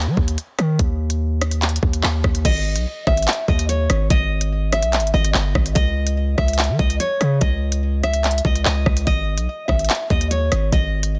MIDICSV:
0, 0, Header, 1, 4, 480
1, 0, Start_track
1, 0, Key_signature, 5, "minor"
1, 0, Tempo, 413793
1, 921, Time_signature, 4, 2, 24, 8
1, 12984, End_track
2, 0, Start_track
2, 0, Title_t, "Nylon-string guitar"
2, 0, Program_c, 0, 24
2, 2844, Note_on_c, 0, 75, 120
2, 3519, Note_off_c, 0, 75, 0
2, 3561, Note_on_c, 0, 76, 82
2, 4012, Note_off_c, 0, 76, 0
2, 4046, Note_on_c, 0, 75, 80
2, 4227, Note_off_c, 0, 75, 0
2, 4279, Note_on_c, 0, 73, 89
2, 4731, Note_off_c, 0, 73, 0
2, 4761, Note_on_c, 0, 75, 90
2, 5438, Note_off_c, 0, 75, 0
2, 5488, Note_on_c, 0, 76, 85
2, 5936, Note_off_c, 0, 76, 0
2, 5958, Note_on_c, 0, 75, 84
2, 6143, Note_off_c, 0, 75, 0
2, 6204, Note_on_c, 0, 75, 79
2, 6654, Note_off_c, 0, 75, 0
2, 6672, Note_on_c, 0, 75, 118
2, 7353, Note_off_c, 0, 75, 0
2, 7397, Note_on_c, 0, 76, 81
2, 7850, Note_off_c, 0, 76, 0
2, 7879, Note_on_c, 0, 75, 82
2, 8063, Note_off_c, 0, 75, 0
2, 8119, Note_on_c, 0, 73, 84
2, 8571, Note_off_c, 0, 73, 0
2, 8595, Note_on_c, 0, 75, 96
2, 9274, Note_off_c, 0, 75, 0
2, 9320, Note_on_c, 0, 76, 94
2, 9772, Note_off_c, 0, 76, 0
2, 9807, Note_on_c, 0, 75, 83
2, 9988, Note_off_c, 0, 75, 0
2, 10042, Note_on_c, 0, 75, 74
2, 10492, Note_off_c, 0, 75, 0
2, 10521, Note_on_c, 0, 75, 115
2, 11198, Note_off_c, 0, 75, 0
2, 11229, Note_on_c, 0, 76, 77
2, 11685, Note_off_c, 0, 76, 0
2, 11724, Note_on_c, 0, 75, 89
2, 11906, Note_off_c, 0, 75, 0
2, 11957, Note_on_c, 0, 73, 82
2, 12410, Note_off_c, 0, 73, 0
2, 12442, Note_on_c, 0, 75, 95
2, 12984, Note_off_c, 0, 75, 0
2, 12984, End_track
3, 0, Start_track
3, 0, Title_t, "808-style bass"
3, 0, Program_c, 1, 38
3, 81, Note_on_c, 1, 55, 101
3, 195, Note_off_c, 1, 55, 0
3, 200, Note_on_c, 1, 39, 105
3, 430, Note_off_c, 1, 39, 0
3, 681, Note_on_c, 1, 51, 103
3, 911, Note_off_c, 1, 51, 0
3, 920, Note_on_c, 1, 39, 111
3, 2074, Note_off_c, 1, 39, 0
3, 2119, Note_on_c, 1, 39, 110
3, 2350, Note_off_c, 1, 39, 0
3, 2361, Note_on_c, 1, 39, 106
3, 2591, Note_off_c, 1, 39, 0
3, 2600, Note_on_c, 1, 39, 103
3, 2831, Note_off_c, 1, 39, 0
3, 2841, Note_on_c, 1, 32, 108
3, 3201, Note_on_c, 1, 35, 101
3, 3219, Note_off_c, 1, 32, 0
3, 3315, Note_off_c, 1, 35, 0
3, 3561, Note_on_c, 1, 32, 110
3, 3791, Note_off_c, 1, 32, 0
3, 4040, Note_on_c, 1, 39, 110
3, 4501, Note_off_c, 1, 39, 0
3, 4521, Note_on_c, 1, 32, 109
3, 4751, Note_off_c, 1, 32, 0
3, 4761, Note_on_c, 1, 32, 108
3, 5600, Note_on_c, 1, 35, 98
3, 5617, Note_off_c, 1, 32, 0
3, 5780, Note_on_c, 1, 32, 96
3, 5797, Note_off_c, 1, 35, 0
3, 5951, Note_off_c, 1, 32, 0
3, 5960, Note_on_c, 1, 32, 110
3, 6191, Note_off_c, 1, 32, 0
3, 6200, Note_on_c, 1, 31, 106
3, 6431, Note_off_c, 1, 31, 0
3, 6440, Note_on_c, 1, 32, 103
3, 6671, Note_off_c, 1, 32, 0
3, 6681, Note_on_c, 1, 37, 115
3, 7372, Note_off_c, 1, 37, 0
3, 7401, Note_on_c, 1, 37, 113
3, 7761, Note_on_c, 1, 52, 99
3, 7778, Note_off_c, 1, 37, 0
3, 7875, Note_off_c, 1, 52, 0
3, 7879, Note_on_c, 1, 37, 112
3, 8110, Note_off_c, 1, 37, 0
3, 8360, Note_on_c, 1, 49, 104
3, 8591, Note_off_c, 1, 49, 0
3, 8600, Note_on_c, 1, 37, 115
3, 9754, Note_off_c, 1, 37, 0
3, 9800, Note_on_c, 1, 37, 111
3, 10031, Note_off_c, 1, 37, 0
3, 10040, Note_on_c, 1, 37, 107
3, 10270, Note_off_c, 1, 37, 0
3, 10279, Note_on_c, 1, 37, 104
3, 10510, Note_off_c, 1, 37, 0
3, 10520, Note_on_c, 1, 32, 107
3, 10880, Note_on_c, 1, 35, 101
3, 10897, Note_off_c, 1, 32, 0
3, 10994, Note_off_c, 1, 35, 0
3, 11241, Note_on_c, 1, 32, 111
3, 11471, Note_off_c, 1, 32, 0
3, 11720, Note_on_c, 1, 39, 107
3, 12181, Note_off_c, 1, 39, 0
3, 12201, Note_on_c, 1, 32, 101
3, 12431, Note_off_c, 1, 32, 0
3, 12440, Note_on_c, 1, 32, 106
3, 12984, Note_off_c, 1, 32, 0
3, 12984, End_track
4, 0, Start_track
4, 0, Title_t, "Drums"
4, 20, Note_on_c, 9, 42, 59
4, 136, Note_off_c, 9, 42, 0
4, 199, Note_on_c, 9, 36, 85
4, 315, Note_off_c, 9, 36, 0
4, 324, Note_on_c, 9, 42, 69
4, 440, Note_off_c, 9, 42, 0
4, 440, Note_on_c, 9, 42, 87
4, 556, Note_off_c, 9, 42, 0
4, 680, Note_on_c, 9, 37, 91
4, 680, Note_on_c, 9, 42, 76
4, 796, Note_off_c, 9, 37, 0
4, 796, Note_off_c, 9, 42, 0
4, 920, Note_on_c, 9, 36, 124
4, 920, Note_on_c, 9, 42, 84
4, 1036, Note_off_c, 9, 36, 0
4, 1036, Note_off_c, 9, 42, 0
4, 1276, Note_on_c, 9, 42, 69
4, 1392, Note_off_c, 9, 42, 0
4, 1641, Note_on_c, 9, 37, 93
4, 1641, Note_on_c, 9, 42, 84
4, 1757, Note_off_c, 9, 37, 0
4, 1757, Note_off_c, 9, 42, 0
4, 1757, Note_on_c, 9, 42, 75
4, 1873, Note_off_c, 9, 42, 0
4, 1880, Note_on_c, 9, 42, 52
4, 1881, Note_on_c, 9, 39, 71
4, 1960, Note_off_c, 9, 42, 0
4, 1960, Note_on_c, 9, 42, 51
4, 1997, Note_off_c, 9, 39, 0
4, 2041, Note_off_c, 9, 42, 0
4, 2041, Note_on_c, 9, 42, 51
4, 2119, Note_on_c, 9, 36, 88
4, 2157, Note_off_c, 9, 42, 0
4, 2235, Note_off_c, 9, 36, 0
4, 2244, Note_on_c, 9, 42, 70
4, 2360, Note_off_c, 9, 42, 0
4, 2360, Note_on_c, 9, 39, 115
4, 2476, Note_off_c, 9, 39, 0
4, 2600, Note_on_c, 9, 36, 91
4, 2601, Note_on_c, 9, 37, 89
4, 2716, Note_off_c, 9, 36, 0
4, 2717, Note_off_c, 9, 37, 0
4, 2724, Note_on_c, 9, 42, 92
4, 2840, Note_off_c, 9, 42, 0
4, 2841, Note_on_c, 9, 36, 123
4, 2842, Note_on_c, 9, 42, 86
4, 2842, Note_on_c, 9, 49, 102
4, 2957, Note_off_c, 9, 36, 0
4, 2958, Note_off_c, 9, 42, 0
4, 2958, Note_off_c, 9, 49, 0
4, 3197, Note_on_c, 9, 42, 69
4, 3313, Note_off_c, 9, 42, 0
4, 3561, Note_on_c, 9, 36, 85
4, 3562, Note_on_c, 9, 37, 94
4, 3677, Note_off_c, 9, 36, 0
4, 3678, Note_off_c, 9, 37, 0
4, 3682, Note_on_c, 9, 42, 62
4, 3741, Note_off_c, 9, 42, 0
4, 3741, Note_on_c, 9, 42, 61
4, 3801, Note_off_c, 9, 42, 0
4, 3801, Note_on_c, 9, 39, 121
4, 3801, Note_on_c, 9, 42, 60
4, 3861, Note_off_c, 9, 42, 0
4, 3861, Note_on_c, 9, 42, 61
4, 3917, Note_off_c, 9, 39, 0
4, 3977, Note_off_c, 9, 42, 0
4, 4040, Note_on_c, 9, 36, 90
4, 4156, Note_off_c, 9, 36, 0
4, 4165, Note_on_c, 9, 42, 70
4, 4281, Note_off_c, 9, 42, 0
4, 4281, Note_on_c, 9, 42, 85
4, 4397, Note_off_c, 9, 42, 0
4, 4521, Note_on_c, 9, 37, 90
4, 4521, Note_on_c, 9, 42, 80
4, 4637, Note_off_c, 9, 37, 0
4, 4637, Note_off_c, 9, 42, 0
4, 4761, Note_on_c, 9, 36, 126
4, 4761, Note_on_c, 9, 42, 86
4, 4877, Note_off_c, 9, 36, 0
4, 4877, Note_off_c, 9, 42, 0
4, 5116, Note_on_c, 9, 42, 71
4, 5232, Note_off_c, 9, 42, 0
4, 5481, Note_on_c, 9, 42, 87
4, 5482, Note_on_c, 9, 37, 94
4, 5597, Note_off_c, 9, 42, 0
4, 5597, Note_on_c, 9, 42, 79
4, 5598, Note_off_c, 9, 37, 0
4, 5713, Note_off_c, 9, 42, 0
4, 5720, Note_on_c, 9, 42, 63
4, 5721, Note_on_c, 9, 39, 68
4, 5800, Note_off_c, 9, 42, 0
4, 5800, Note_on_c, 9, 42, 52
4, 5837, Note_off_c, 9, 39, 0
4, 5881, Note_off_c, 9, 42, 0
4, 5881, Note_on_c, 9, 42, 37
4, 5997, Note_off_c, 9, 42, 0
4, 6084, Note_on_c, 9, 42, 70
4, 6200, Note_off_c, 9, 42, 0
4, 6200, Note_on_c, 9, 39, 114
4, 6316, Note_off_c, 9, 39, 0
4, 6440, Note_on_c, 9, 36, 95
4, 6440, Note_on_c, 9, 37, 89
4, 6556, Note_off_c, 9, 36, 0
4, 6556, Note_off_c, 9, 37, 0
4, 6563, Note_on_c, 9, 42, 93
4, 6679, Note_off_c, 9, 42, 0
4, 6681, Note_on_c, 9, 36, 123
4, 6681, Note_on_c, 9, 42, 90
4, 6797, Note_off_c, 9, 36, 0
4, 6797, Note_off_c, 9, 42, 0
4, 7037, Note_on_c, 9, 42, 69
4, 7153, Note_off_c, 9, 42, 0
4, 7401, Note_on_c, 9, 36, 88
4, 7401, Note_on_c, 9, 37, 95
4, 7517, Note_off_c, 9, 36, 0
4, 7517, Note_off_c, 9, 37, 0
4, 7520, Note_on_c, 9, 42, 62
4, 7580, Note_off_c, 9, 42, 0
4, 7580, Note_on_c, 9, 42, 62
4, 7640, Note_off_c, 9, 42, 0
4, 7640, Note_on_c, 9, 42, 62
4, 7641, Note_on_c, 9, 39, 120
4, 7700, Note_off_c, 9, 42, 0
4, 7700, Note_on_c, 9, 42, 58
4, 7757, Note_off_c, 9, 39, 0
4, 7816, Note_off_c, 9, 42, 0
4, 7879, Note_on_c, 9, 36, 90
4, 7995, Note_off_c, 9, 36, 0
4, 8004, Note_on_c, 9, 42, 74
4, 8120, Note_off_c, 9, 42, 0
4, 8120, Note_on_c, 9, 42, 88
4, 8236, Note_off_c, 9, 42, 0
4, 8360, Note_on_c, 9, 37, 92
4, 8361, Note_on_c, 9, 42, 74
4, 8476, Note_off_c, 9, 37, 0
4, 8477, Note_off_c, 9, 42, 0
4, 8600, Note_on_c, 9, 36, 121
4, 8600, Note_on_c, 9, 42, 88
4, 8716, Note_off_c, 9, 36, 0
4, 8716, Note_off_c, 9, 42, 0
4, 8956, Note_on_c, 9, 42, 72
4, 9072, Note_off_c, 9, 42, 0
4, 9321, Note_on_c, 9, 37, 97
4, 9321, Note_on_c, 9, 42, 88
4, 9437, Note_off_c, 9, 37, 0
4, 9437, Note_off_c, 9, 42, 0
4, 9437, Note_on_c, 9, 42, 78
4, 9553, Note_off_c, 9, 42, 0
4, 9560, Note_on_c, 9, 42, 52
4, 9561, Note_on_c, 9, 39, 70
4, 9640, Note_off_c, 9, 42, 0
4, 9640, Note_on_c, 9, 42, 52
4, 9677, Note_off_c, 9, 39, 0
4, 9720, Note_off_c, 9, 42, 0
4, 9720, Note_on_c, 9, 42, 54
4, 9799, Note_on_c, 9, 36, 86
4, 9836, Note_off_c, 9, 42, 0
4, 9915, Note_off_c, 9, 36, 0
4, 9924, Note_on_c, 9, 42, 69
4, 10039, Note_on_c, 9, 39, 114
4, 10040, Note_off_c, 9, 42, 0
4, 10155, Note_off_c, 9, 39, 0
4, 10279, Note_on_c, 9, 36, 92
4, 10280, Note_on_c, 9, 37, 91
4, 10395, Note_off_c, 9, 36, 0
4, 10396, Note_off_c, 9, 37, 0
4, 10402, Note_on_c, 9, 42, 96
4, 10518, Note_off_c, 9, 42, 0
4, 10520, Note_on_c, 9, 36, 123
4, 10520, Note_on_c, 9, 42, 87
4, 10636, Note_off_c, 9, 36, 0
4, 10636, Note_off_c, 9, 42, 0
4, 10876, Note_on_c, 9, 42, 71
4, 10992, Note_off_c, 9, 42, 0
4, 11241, Note_on_c, 9, 36, 90
4, 11241, Note_on_c, 9, 37, 97
4, 11357, Note_off_c, 9, 36, 0
4, 11357, Note_off_c, 9, 37, 0
4, 11361, Note_on_c, 9, 42, 59
4, 11421, Note_off_c, 9, 42, 0
4, 11421, Note_on_c, 9, 42, 61
4, 11480, Note_off_c, 9, 42, 0
4, 11480, Note_on_c, 9, 42, 62
4, 11481, Note_on_c, 9, 39, 120
4, 11540, Note_off_c, 9, 42, 0
4, 11540, Note_on_c, 9, 42, 59
4, 11597, Note_off_c, 9, 39, 0
4, 11656, Note_off_c, 9, 42, 0
4, 11719, Note_on_c, 9, 36, 90
4, 11835, Note_off_c, 9, 36, 0
4, 11844, Note_on_c, 9, 42, 71
4, 11960, Note_off_c, 9, 42, 0
4, 11961, Note_on_c, 9, 42, 85
4, 12077, Note_off_c, 9, 42, 0
4, 12200, Note_on_c, 9, 37, 92
4, 12201, Note_on_c, 9, 42, 77
4, 12316, Note_off_c, 9, 37, 0
4, 12317, Note_off_c, 9, 42, 0
4, 12441, Note_on_c, 9, 36, 120
4, 12441, Note_on_c, 9, 42, 86
4, 12557, Note_off_c, 9, 36, 0
4, 12557, Note_off_c, 9, 42, 0
4, 12796, Note_on_c, 9, 42, 71
4, 12912, Note_off_c, 9, 42, 0
4, 12984, End_track
0, 0, End_of_file